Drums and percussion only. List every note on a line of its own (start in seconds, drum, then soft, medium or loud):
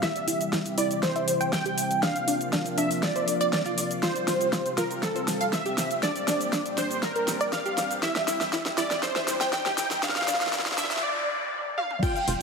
0.03 kick loud
0.03 snare medium
0.03 closed hi-hat medium
0.03 cabasa soft
0.16 closed hi-hat soft
0.16 cabasa soft
0.28 open hi-hat loud
0.28 cabasa medium
0.41 closed hi-hat soft
0.41 cabasa soft
0.53 kick loud
0.53 snare medium
0.53 closed hi-hat medium
0.53 cabasa soft
0.66 closed hi-hat soft
0.66 cabasa soft
0.78 open hi-hat loud
0.78 cabasa medium
0.91 closed hi-hat soft
0.91 cabasa soft
1.03 kick loud
1.03 snare medium
1.03 closed hi-hat medium
1.03 cabasa soft
1.16 closed hi-hat soft
1.16 cabasa soft
1.28 open hi-hat loud
1.28 cabasa medium
1.41 closed hi-hat soft
1.41 cabasa soft
1.53 kick loud
1.53 snare medium
1.53 closed hi-hat medium
1.53 cabasa soft
1.66 closed hi-hat soft
1.66 cabasa soft
1.78 open hi-hat loud
1.78 cabasa medium
1.91 closed hi-hat soft
1.91 cabasa soft
2.03 kick loud
2.03 snare medium
2.03 closed hi-hat medium
2.03 cabasa soft
2.16 closed hi-hat soft
2.16 cabasa soft
2.28 open hi-hat loud
2.28 cabasa medium
2.41 closed hi-hat soft
2.41 cabasa soft
2.53 kick loud
2.53 snare medium
2.53 closed hi-hat medium
2.53 cabasa soft
2.66 closed hi-hat soft
2.66 cabasa soft
2.78 open hi-hat loud
2.78 cabasa medium
2.91 open hi-hat medium
2.91 cabasa soft
3.03 kick loud
3.03 snare medium
3.03 closed hi-hat medium
3.03 cabasa soft
3.16 closed hi-hat soft
3.16 cabasa soft
3.28 open hi-hat loud
3.28 cabasa medium
3.41 closed hi-hat soft
3.41 cabasa soft
3.53 kick loud
3.53 snare medium
3.53 closed hi-hat medium
3.53 cabasa soft
3.66 closed hi-hat soft
3.66 cabasa soft
3.78 open hi-hat loud
3.78 cabasa medium
3.91 closed hi-hat soft
3.91 cabasa soft
4.03 kick loud
4.03 snare medium
4.03 closed hi-hat medium
4.03 cabasa soft
4.16 closed hi-hat soft
4.16 cabasa soft
4.28 snare medium
4.28 open hi-hat loud
4.28 cabasa medium
4.41 closed hi-hat soft
4.41 cabasa soft
4.53 kick loud
4.53 snare medium
4.53 closed hi-hat medium
4.53 cabasa soft
4.66 closed hi-hat soft
4.66 cabasa soft
4.78 snare medium
4.78 open hi-hat loud
4.78 cabasa medium
4.91 closed hi-hat soft
4.91 cabasa soft
5.03 kick loud
5.03 snare medium
5.03 closed hi-hat medium
5.03 cabasa soft
5.16 closed hi-hat soft
5.16 cabasa soft
5.28 snare medium
5.28 open hi-hat loud
5.28 cabasa medium
5.41 closed hi-hat soft
5.41 cabasa soft
5.53 kick loud
5.53 snare medium
5.53 closed hi-hat medium
5.53 cabasa soft
5.66 closed hi-hat soft
5.66 cabasa soft
5.78 snare medium
5.78 open hi-hat loud
5.78 cabasa medium
5.91 closed hi-hat soft
5.91 cabasa soft
6.03 kick loud
6.03 snare medium
6.03 closed hi-hat medium
6.03 cabasa soft
6.16 closed hi-hat soft
6.16 cabasa soft
6.28 snare medium
6.28 open hi-hat loud
6.28 cabasa medium
6.41 closed hi-hat soft
6.41 cabasa soft
6.53 kick loud
6.53 snare medium
6.53 closed hi-hat medium
6.53 cabasa soft
6.66 closed hi-hat soft
6.66 cabasa soft
6.78 snare medium
6.78 open hi-hat loud
6.78 cabasa medium
6.91 closed hi-hat soft
6.91 cabasa soft
7.03 kick loud
7.03 snare medium
7.03 closed hi-hat medium
7.03 cabasa soft
7.16 closed hi-hat soft
7.16 cabasa soft
7.28 snare medium
7.28 open hi-hat loud
7.28 cabasa medium
7.41 closed hi-hat soft
7.41 cabasa soft
7.53 kick loud
7.53 snare medium
7.53 closed hi-hat medium
7.53 cabasa soft
7.66 closed hi-hat soft
7.66 cabasa soft
7.78 snare medium
7.78 open hi-hat loud
7.78 cabasa medium
7.91 closed hi-hat soft
7.91 cabasa soft
8.03 kick loud
8.03 snare loud
8.03 closed hi-hat medium
8.03 cabasa soft
8.16 snare medium
8.16 closed hi-hat soft
8.16 cabasa soft
8.28 snare medium
8.28 open hi-hat loud
8.28 cabasa medium
8.41 snare medium
8.41 closed hi-hat soft
8.41 cabasa soft
8.53 kick loud
8.53 snare medium
8.53 closed hi-hat medium
8.53 cabasa soft
8.66 snare medium
8.66 closed hi-hat soft
8.66 cabasa soft
8.78 snare medium
8.78 open hi-hat loud
8.78 cabasa medium
8.91 snare medium
8.91 closed hi-hat soft
8.91 cabasa soft
9.03 kick loud
9.03 snare medium
9.03 closed hi-hat medium
9.03 cabasa soft
9.16 snare medium
9.16 closed hi-hat soft
9.16 cabasa soft
9.28 snare loud
9.28 open hi-hat loud
9.28 cabasa medium
9.41 snare medium
9.41 closed hi-hat soft
9.41 cabasa soft
9.53 kick loud
9.53 snare loud
9.53 closed hi-hat medium
9.53 cabasa soft
9.66 snare medium
9.66 closed hi-hat soft
9.66 cabasa soft
9.78 snare loud
9.78 open hi-hat loud
9.78 cabasa medium
9.91 snare medium
9.91 closed hi-hat soft
9.91 cabasa soft
10.03 kick loud
10.03 snare loud
10.03 closed hi-hat medium
10.03 cabasa soft
10.09 snare medium
10.16 snare medium
10.16 closed hi-hat soft
10.16 cabasa soft
10.22 snare medium
10.28 snare loud
10.28 open hi-hat loud
10.28 cabasa medium
10.34 snare medium
10.41 snare medium
10.41 closed hi-hat soft
10.41 cabasa soft
10.47 snare medium
10.53 kick loud
10.53 snare loud
10.53 closed hi-hat medium
10.53 cabasa soft
10.59 snare medium
10.66 snare medium
10.66 closed hi-hat soft
10.66 cabasa soft
10.72 snare medium
10.78 snare loud
10.78 open hi-hat loud
10.78 cabasa medium
10.84 snare medium
10.91 snare medium
10.91 open hi-hat medium
10.91 cabasa soft
10.97 snare medium
11.78 high tom medium
11.91 mid tom medium
12.03 kick loud
12.03 closed hi-hat medium
12.03 crash loud
12.03 cabasa medium
12.16 closed hi-hat soft
12.16 cabasa soft
12.28 open hi-hat loud